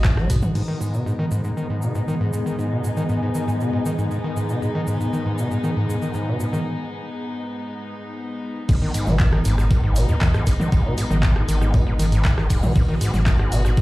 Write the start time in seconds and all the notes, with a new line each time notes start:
Already playing: G#1 G#3 B3 F#4
0.04 G#2, kick, snare, clap, tambourine, shaker
0.17 F#3, cross-stick, snare
0.30 G#2 B2, kick, open hi-hat, tambourine, shaker
0.42 mid tom, shaker
0.55 G#2 G#3 B3 D#4, crash, shaker
0.67 D#3 G#4
0.81 G#2, shaker
0.94 B2, shaker
1.06 G#2, shaker
1.19 D#3
1.24 G#5
1.30 G#2 D#5, shaker
1.44 G#2, shaker
1.57 D#3, shaker
1.70 G#2
1.82 B2, shaker
1.95 G#2, shaker
2.08 D#3, shaker
2.21 G#2
2.33 G#2, shaker
2.46 D#3, shaker
2.59 G#2, shaker
2.72 B2
2.84 G#2, shaker
2.97 D#3, shaker
3.09 G#2, shaker
3.22 G#2
3.35 D#3, shaker
3.48 G#2, shaker
3.60 B2, shaker
3.73 G#2
3.86 D#3, shaker
3.99 G#2, shaker
4.11 G#2, shaker
4.24 D#3
4.37 G#2, shaker
4.49 B2, shaker
4.62 G#2, shaker
4.75 D#3
4.87 G#2, shaker
5.01 G#2, shaker
5.13 D#3, shaker
5.26 G#2
5.38 B2, shaker
5.51 G#2, shaker
5.64 D#3, shaker
5.77 G#2
5.89 G#2, shaker
6.02 D#3, shaker
6.14 G#2, shaker
6.28 B2
6.40 G#2, shaker
6.53 D#3, shaker
8.69 G#1 G#2 G#3 B3 D#4, kick, tambourine, crash, shaker
8.82 D#3
8.94 G#2, open hi-hat, tambourine, shaker
9.07 G#1 B2, snare, mid tom, shaker
9.19 G#2, kick, snare, clap, tambourine, shaker
9.33 D#3, cross-stick
9.45 G#1 G#2, open hi-hat, tambourine, shaker
9.58 G#2, cross-stick, snare, shaker
9.70 D#3, kick, tambourine, shaker
9.84 G#2
9.96 B2, snare, open hi-hat, tambourine, shaker
10.09 D#2 G#2, shaker
10.21 D#3, kick, snare, clap, tambourine, shaker
10.34 G#2, cross-stick, closed hi-hat
10.46 G#1 G#2, kick, open hi-hat, tambourine, shaker
10.60 D#3, mid tom, shaker
10.72 G#1 G#2, kick, tambourine, shaker
10.85 B2
10.97 G#2, open hi-hat, tambourine, shaker
11.11 G#1 D#3, mid tom, shaker
11.23 G#2, kick, snare, clap, tambourine, shaker
11.36 G#2, cross-stick
11.48 G#1 D#3, open hi-hat, tambourine, shaker
11.61 G#2, cross-stick, shaker
11.74 B2, kick, tambourine, shaker
11.87 G#2
11.99 G#1 D#3, open hi-hat, tambourine, shaker
12.12 G#2, open hi-hat, shaker
12.25 G#2, kick, snare, clap, tambourine, shaker
12.38 D#3, cross-stick, snare
12.50 D#1 G#2, kick, open hi-hat, shaker
12.63 B1 B2, mid tom, shaker
12.76 G#1 G#2 F#4, kick, tambourine, shaker
12.88 D#3
13.01 G#2, open hi-hat, tambourine, shaker
13.14 G#1 G#2, snare, mid tom, shaker
13.26 D#3, kick, snare, clap, tambourine, shaker
13.39 G#2, cross-stick
13.52 G#1 B2, open hi-hat, tambourine, shaker
13.65 G#2, cross-stick, snare, shaker
13.77 D#3, kick, tambourine, shaker